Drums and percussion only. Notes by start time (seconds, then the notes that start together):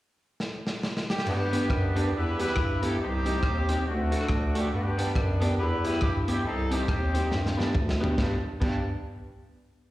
0.40 snare
0.67 snare
0.83 snare
0.97 snare
1.10 snare
1.18 snare
1.26 crash
1.53 closed hi-hat
1.70 kick, cross-stick
1.96 closed hi-hat
2.40 closed hi-hat
2.48 cross-stick
2.56 kick, cross-stick
2.83 closed hi-hat
3.26 closed hi-hat
3.43 kick, cross-stick
3.69 closed hi-hat
4.12 closed hi-hat
4.21 cross-stick
4.29 kick, cross-stick
4.55 closed hi-hat
4.99 closed hi-hat
5.16 kick, cross-stick
5.42 closed hi-hat
5.85 closed hi-hat
5.94 cross-stick
6.01 kick, cross-stick
6.28 closed hi-hat
6.71 closed hi-hat
6.88 kick, cross-stick
7.15 closed hi-hat
7.31 snare
7.46 snare
7.60 snare
7.75 kick, mid tom
7.89 snare
8.04 floor tom
8.18 kick, snare
8.62 kick, crash